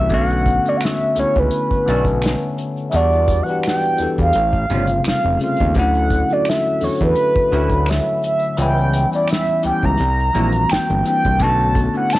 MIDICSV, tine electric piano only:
0, 0, Header, 1, 2, 480
1, 0, Start_track
1, 0, Tempo, 705882
1, 73, Time_signature, 4, 2, 24, 8
1, 8292, End_track
2, 0, Start_track
2, 0, Title_t, "Tine electric piano"
2, 0, Program_c, 0, 4
2, 0, Control_c, 0, 64, 127
2, 0, Note_on_c, 0, 52, 66
2, 0, Note_on_c, 0, 55, 62
2, 0, Note_on_c, 0, 58, 60
2, 0, Note_on_c, 0, 61, 61
2, 0, Note_on_c, 0, 66, 75
2, 0, Note_on_c, 0, 67, 75
2, 63, Note_on_c, 0, 50, 93
2, 70, Note_on_c, 0, 57, 83
2, 79, Note_on_c, 0, 59, 81
2, 81, Control_c, 0, 64, 0
2, 82, Note_off_c, 0, 52, 0
2, 84, Note_off_c, 0, 58, 0
2, 84, Note_off_c, 0, 66, 0
2, 86, Note_off_c, 0, 55, 0
2, 86, Note_off_c, 0, 61, 0
2, 86, Note_off_c, 0, 67, 0
2, 86, Note_on_c, 0, 61, 79
2, 94, Note_on_c, 0, 66, 106
2, 190, Control_c, 0, 64, 127
2, 404, Note_off_c, 0, 50, 0
2, 407, Note_off_c, 0, 57, 0
2, 411, Note_off_c, 0, 59, 0
2, 415, Note_off_c, 0, 61, 0
2, 419, Note_off_c, 0, 66, 0
2, 438, Note_on_c, 0, 50, 60
2, 445, Note_on_c, 0, 57, 59
2, 454, Note_on_c, 0, 59, 59
2, 462, Note_on_c, 0, 61, 59
2, 470, Note_on_c, 0, 66, 75
2, 760, Note_off_c, 0, 50, 0
2, 764, Note_off_c, 0, 57, 0
2, 768, Note_off_c, 0, 59, 0
2, 772, Note_off_c, 0, 61, 0
2, 776, Note_off_c, 0, 66, 0
2, 786, Note_on_c, 0, 50, 72
2, 792, Note_on_c, 0, 57, 67
2, 801, Note_on_c, 0, 59, 66
2, 809, Note_on_c, 0, 61, 69
2, 817, Note_on_c, 0, 64, 77
2, 1230, Note_off_c, 0, 50, 0
2, 1233, Note_off_c, 0, 57, 0
2, 1238, Note_off_c, 0, 59, 0
2, 1242, Note_off_c, 0, 61, 0
2, 1245, Note_off_c, 0, 64, 0
2, 1265, Note_on_c, 0, 50, 73
2, 1274, Note_on_c, 0, 57, 68
2, 1282, Note_on_c, 0, 59, 71
2, 1289, Note_on_c, 0, 61, 70
2, 1297, Note_on_c, 0, 69, 80
2, 1930, Note_off_c, 0, 50, 0
2, 1934, Note_off_c, 0, 57, 0
2, 1938, Note_off_c, 0, 59, 0
2, 1942, Note_off_c, 0, 61, 0
2, 1946, Note_off_c, 0, 69, 0
2, 1980, Note_on_c, 0, 52, 88
2, 1989, Note_on_c, 0, 55, 90
2, 1997, Note_on_c, 0, 59, 80
2, 2003, Control_c, 0, 64, 0
2, 2005, Note_on_c, 0, 62, 84
2, 2014, Note_on_c, 0, 66, 99
2, 2108, Control_c, 0, 64, 127
2, 2322, Note_off_c, 0, 52, 0
2, 2327, Note_off_c, 0, 55, 0
2, 2330, Note_off_c, 0, 59, 0
2, 2335, Note_off_c, 0, 62, 0
2, 2339, Note_off_c, 0, 66, 0
2, 2354, Note_on_c, 0, 52, 62
2, 2361, Note_on_c, 0, 55, 59
2, 2371, Note_on_c, 0, 59, 62
2, 2377, Note_on_c, 0, 62, 57
2, 2384, Note_on_c, 0, 67, 69
2, 2678, Note_off_c, 0, 52, 0
2, 2682, Note_off_c, 0, 55, 0
2, 2686, Note_off_c, 0, 59, 0
2, 2690, Note_off_c, 0, 62, 0
2, 2693, Note_off_c, 0, 67, 0
2, 2703, Note_on_c, 0, 52, 70
2, 2709, Note_on_c, 0, 55, 66
2, 2718, Note_on_c, 0, 59, 60
2, 2726, Note_on_c, 0, 62, 64
2, 2735, Note_on_c, 0, 69, 79
2, 2948, Note_off_c, 0, 52, 0
2, 2951, Note_off_c, 0, 55, 0
2, 2955, Note_off_c, 0, 59, 0
2, 2959, Note_off_c, 0, 62, 0
2, 2961, Control_c, 0, 64, 0
2, 2964, Note_off_c, 0, 69, 0
2, 3082, Control_c, 0, 64, 127
2, 3186, Note_on_c, 0, 48, 53
2, 3194, Note_on_c, 0, 55, 60
2, 3200, Note_on_c, 0, 57, 62
2, 3210, Note_on_c, 0, 60, 62
2, 3218, Note_on_c, 0, 65, 70
2, 3229, Note_on_c, 0, 49, 68
2, 3238, Note_off_c, 0, 48, 0
2, 3634, Note_off_c, 0, 55, 0
2, 3637, Note_off_c, 0, 57, 0
2, 3642, Note_off_c, 0, 60, 0
2, 3646, Note_off_c, 0, 65, 0
2, 3652, Note_off_c, 0, 49, 0
2, 3664, Note_on_c, 0, 49, 72
2, 3673, Note_on_c, 0, 55, 61
2, 3680, Note_on_c, 0, 57, 61
2, 3689, Note_on_c, 0, 60, 60
2, 3697, Note_on_c, 0, 65, 69
2, 3889, Note_off_c, 0, 49, 0
2, 3893, Note_off_c, 0, 55, 0
2, 3897, Note_off_c, 0, 57, 0
2, 3901, Note_off_c, 0, 60, 0
2, 3905, Note_off_c, 0, 65, 0
2, 3907, Note_on_c, 0, 50, 90
2, 3916, Note_on_c, 0, 54, 80
2, 3922, Control_c, 0, 64, 0
2, 3923, Note_on_c, 0, 57, 79
2, 3931, Note_on_c, 0, 61, 83
2, 3940, Note_on_c, 0, 64, 101
2, 4059, Control_c, 0, 64, 127
2, 4246, Note_off_c, 0, 50, 0
2, 4250, Note_off_c, 0, 54, 0
2, 4254, Note_off_c, 0, 57, 0
2, 4258, Note_off_c, 0, 61, 0
2, 4262, Note_off_c, 0, 64, 0
2, 4277, Note_on_c, 0, 50, 64
2, 4285, Note_on_c, 0, 54, 58
2, 4295, Note_on_c, 0, 57, 60
2, 4302, Note_on_c, 0, 61, 57
2, 4309, Note_on_c, 0, 66, 71
2, 4600, Note_off_c, 0, 50, 0
2, 4603, Note_off_c, 0, 54, 0
2, 4609, Note_off_c, 0, 57, 0
2, 4612, Note_off_c, 0, 61, 0
2, 4616, Note_off_c, 0, 66, 0
2, 4630, Note_on_c, 0, 50, 72
2, 4637, Note_on_c, 0, 54, 68
2, 4644, Note_on_c, 0, 57, 69
2, 4652, Note_on_c, 0, 61, 63
2, 4661, Note_on_c, 0, 66, 77
2, 5072, Note_off_c, 0, 50, 0
2, 5076, Note_off_c, 0, 54, 0
2, 5079, Note_off_c, 0, 57, 0
2, 5083, Note_off_c, 0, 61, 0
2, 5087, Note_off_c, 0, 66, 0
2, 5107, Note_on_c, 0, 50, 70
2, 5114, Note_on_c, 0, 54, 67
2, 5123, Note_on_c, 0, 57, 67
2, 5132, Note_on_c, 0, 61, 65
2, 5140, Note_on_c, 0, 64, 82
2, 5771, Note_off_c, 0, 50, 0
2, 5775, Note_off_c, 0, 54, 0
2, 5779, Note_off_c, 0, 57, 0
2, 5784, Note_off_c, 0, 61, 0
2, 5787, Note_off_c, 0, 64, 0
2, 5829, Note_on_c, 0, 52, 88
2, 5836, Note_on_c, 0, 55, 84
2, 5841, Control_c, 0, 64, 0
2, 5843, Note_on_c, 0, 59, 85
2, 5852, Note_on_c, 0, 61, 83
2, 5859, Note_on_c, 0, 64, 98
2, 5979, Control_c, 0, 64, 127
2, 6166, Note_off_c, 0, 52, 0
2, 6170, Note_off_c, 0, 55, 0
2, 6174, Note_off_c, 0, 59, 0
2, 6178, Note_off_c, 0, 61, 0
2, 6182, Note_off_c, 0, 64, 0
2, 6201, Note_on_c, 0, 52, 62
2, 6208, Note_on_c, 0, 55, 56
2, 6216, Note_on_c, 0, 59, 58
2, 6225, Note_on_c, 0, 61, 58
2, 6232, Note_on_c, 0, 64, 73
2, 6521, Note_off_c, 0, 52, 0
2, 6525, Note_off_c, 0, 55, 0
2, 6529, Note_off_c, 0, 59, 0
2, 6533, Note_off_c, 0, 61, 0
2, 6537, Note_off_c, 0, 64, 0
2, 6546, Note_on_c, 0, 52, 71
2, 6555, Note_on_c, 0, 55, 69
2, 6561, Note_on_c, 0, 59, 65
2, 6570, Note_on_c, 0, 61, 66
2, 6578, Note_on_c, 0, 67, 77
2, 6789, Note_off_c, 0, 52, 0
2, 6794, Note_off_c, 0, 55, 0
2, 6797, Note_off_c, 0, 59, 0
2, 6801, Note_off_c, 0, 61, 0
2, 6802, Control_c, 0, 64, 0
2, 6805, Note_off_c, 0, 67, 0
2, 6921, Control_c, 0, 64, 127
2, 7026, Note_on_c, 0, 52, 67
2, 7033, Note_on_c, 0, 55, 63
2, 7041, Note_on_c, 0, 58, 65
2, 7050, Note_on_c, 0, 60, 64
2, 7058, Note_on_c, 0, 66, 77
2, 7470, Note_off_c, 0, 52, 0
2, 7474, Note_off_c, 0, 55, 0
2, 7477, Note_off_c, 0, 58, 0
2, 7482, Note_off_c, 0, 60, 0
2, 7486, Note_off_c, 0, 66, 0
2, 7506, Note_on_c, 0, 52, 73
2, 7514, Note_on_c, 0, 55, 63
2, 7521, Note_on_c, 0, 58, 66
2, 7529, Note_on_c, 0, 60, 65
2, 7538, Note_on_c, 0, 62, 77
2, 7729, Note_off_c, 0, 52, 0
2, 7734, Note_off_c, 0, 55, 0
2, 7737, Note_off_c, 0, 58, 0
2, 7741, Note_off_c, 0, 60, 0
2, 7746, Note_off_c, 0, 62, 0
2, 7746, Note_on_c, 0, 50, 92
2, 7753, Note_on_c, 0, 57, 92
2, 7761, Control_c, 0, 64, 0
2, 7761, Note_on_c, 0, 59, 84
2, 7770, Note_on_c, 0, 61, 84
2, 7779, Note_on_c, 0, 66, 103
2, 7880, Control_c, 0, 64, 127
2, 8085, Note_off_c, 0, 50, 0
2, 8089, Note_off_c, 0, 57, 0
2, 8093, Note_off_c, 0, 59, 0
2, 8097, Note_off_c, 0, 61, 0
2, 8101, Note_off_c, 0, 66, 0
2, 8118, Note_on_c, 0, 50, 66
2, 8125, Note_on_c, 0, 57, 57
2, 8133, Note_on_c, 0, 59, 59
2, 8142, Note_on_c, 0, 61, 64
2, 8150, Note_on_c, 0, 64, 69
2, 8292, Note_off_c, 0, 50, 0
2, 8292, Note_off_c, 0, 57, 0
2, 8292, Note_off_c, 0, 59, 0
2, 8292, Note_off_c, 0, 61, 0
2, 8292, Note_off_c, 0, 64, 0
2, 8292, End_track
0, 0, End_of_file